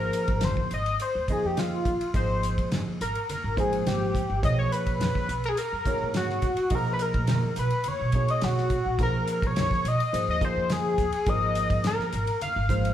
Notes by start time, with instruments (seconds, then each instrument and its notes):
Already playing: tine electric piano F3 A#3 D#4 G#4 C5, analog synth lead A#4
0.13 hi-hat pedal, ride
0.28 upright bass G#1, kick, ride
0.41 analog synth lead C5, snare, hi-hat pedal, ride, muted conga, high conga, low conga
0.57 kick
0.71 upright bass G#1, analog synth lead D#5, hi-hat pedal, ride
0.86 ride
1.00 analog synth lead C5, hi-hat pedal, ride, muted conga
1.15 upright bass D#2
1.28 tine electric piano F3 A#3 D#4 G#4 D#5, analog synth lead G#4, kick, hi-hat pedal, ride, muted conga, high conga
1.45 upright bass F2, analog synth lead G4
1.56 analog synth lead F4, snare, hi-hat pedal, ride, high conga
1.85 upright bass D#2, kick, hi-hat pedal, ride
2.01 muted upright bass stroke, ride
2.14 upright bass G#1, tine electric piano F3 A#3 D#4 G#4 D#5, analog synth lead C5, kick, hi-hat pedal, ride
2.43 hi-hat pedal, ride
2.58 upright bass G#2, kick, ride
2.72 snare, hi-hat pedal, ride, muted conga, high conga
2.87 muted upright bass stroke
3.01 upright bass G#1, analog synth lead A#4, hi-hat pedal, ride
3.15 ride
3.29 analog synth lead A#4, muted upright bass stroke, hi-hat pedal, ride, muted conga, high conga
3.44 upright bass G#1
3.56 tine electric piano F3 G#3 A#3 D#4 C5, analog synth lead G#4, kick, hi-hat pedal, ride, muted conga
3.73 ride
3.86 upright bass G#1, analog synth lead G4, snare, hi-hat pedal, ride, high conga
4.15 kick, snare, hi-hat pedal, ride
4.30 upright bass G1
4.42 upright bass B1, tine electric piano F3 A#3 D#4 G#4 C#5, analog synth lead D#5, kick, hi-hat pedal, ride
4.59 analog synth lead C#5
4.72 analog synth lead B4, hi-hat pedal, ride
4.86 upright bass B1, kick, ride
5.00 analog synth lead B4, snare, hi-hat pedal, ride, muted conga, high conga, low conga
5.15 kick, snare
5.29 upright bass B1, hi-hat pedal, ride
5.44 analog synth lead A#4, ride
5.49 analog synth lead G#4
5.57 analog synth lead A#4, hi-hat pedal, ride, muted conga
5.73 upright bass F#2
5.86 tine electric piano F#3 A#3 D#4 G#4 C#5, kick, hi-hat pedal, ride, muted conga, high conga
6.02 upright bass G#2
6.14 analog synth lead F#4, snare, hi-hat pedal, ride, high conga
6.30 snare
6.42 upright bass F#2, kick, snare, hi-hat pedal, ride
6.57 muted upright bass stroke, ride
6.70 upright bass B1, tine electric piano F3 A#3 D#4 G#4 D#5, kick, hi-hat pedal, ride
6.75 analog synth lead A#4
6.93 analog synth lead B4
6.99 analog synth lead A#4, hi-hat pedal, ride
7.14 upright bass B2, kick, ride
7.27 snare, hi-hat pedal, ride, muted conga, high conga
7.44 muted upright bass stroke
7.56 upright bass B1, analog synth lead B4, hi-hat pedal, ride
7.70 ride
7.84 muted upright bass stroke, hi-hat pedal, ride, muted conga, high conga
7.88 analog synth lead C#5
8.01 upright bass B1
8.12 tine electric piano F#3 A#3 D#4 G#4 C#5, kick, hi-hat pedal, ride
8.28 analog synth lead D#5, ride
8.41 upright bass B1, analog synth lead F#4, snare, hi-hat pedal, ride, high conga
8.57 snare
8.70 kick, hi-hat pedal, ride
8.86 upright bass A#1
8.99 upright bass B1, tine electric piano F3 A#3 D#4 G#4 A#4, analog synth lead A#4, kick, hi-hat pedal, ride
9.27 hi-hat pedal, ride
9.32 analog synth lead A#4
9.42 upright bass B1, kick, ride
9.47 analog synth lead C#5
9.56 snare, hi-hat pedal, ride, muted conga, high conga, low conga
9.71 kick, snare
9.85 upright bass B1, analog synth lead D#5, hi-hat pedal, ride
10.00 ride
10.13 upright bass G#1, tine electric piano F3 A#3 D#4 G#4 C5, hi-hat pedal, ride
10.28 upright bass D#2, analog synth lead D#5
10.41 tine electric piano F3 A#3 D#4 G#4 D#5, analog synth lead C5, kick, hi-hat pedal, ride, muted conga, high conga
10.56 upright bass F2
10.69 analog synth lead G#4, snare, hi-hat pedal, ride, high conga
10.98 upright bass D#2, kick, snare, hi-hat pedal, ride
11.12 muted upright bass stroke, ride
11.26 upright bass G#1, tine electric piano F3 A#3 D#4 G#4 A#4, analog synth lead D#5, kick, hi-hat pedal, ride
11.55 hi-hat pedal, ride
11.70 upright bass G#2, kick, ride
11.84 analog synth lead A#4, snare, hi-hat pedal, ride, muted conga, high conga
11.99 muted upright bass stroke, snare
12.12 upright bass G#1, hi-hat pedal, ride
12.27 ride
12.41 analog synth lead F5, muted upright bass stroke, hi-hat pedal, ride, muted conga, high conga
12.56 upright bass G#1
12.69 tine electric piano F3 G#3 A#3 D#4 C5, kick, hi-hat pedal, ride
12.85 ride